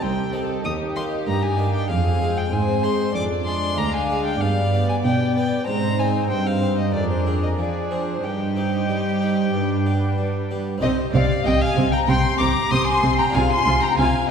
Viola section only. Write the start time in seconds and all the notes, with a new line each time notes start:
0.03 C4
0.65 D#4
1.27 D#4
1.58 D4
1.90 C4
2.53 C4
3.15 D4
4.42 B3
5.05 B3
5.68 C4
6.94 D4
7.58 D4
8.24 D#4
9.54 D4
10.82 C4
11.14 C4
11.46 C4
11.77 C4
12.09 C4
12.41 C4
12.72 C4
13.04 C4
13.35 F4
13.67 F4
13.99 F4